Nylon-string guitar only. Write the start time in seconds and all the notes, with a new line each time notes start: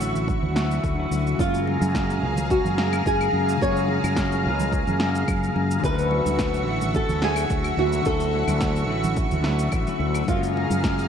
Already playing: F#4
1.40 F4
2.51 F#4
3.07 G#4
3.62 C#5
5.85 B4
6.96 A4
7.24 G#4
7.79 F#4
8.06 A4
10.28 F4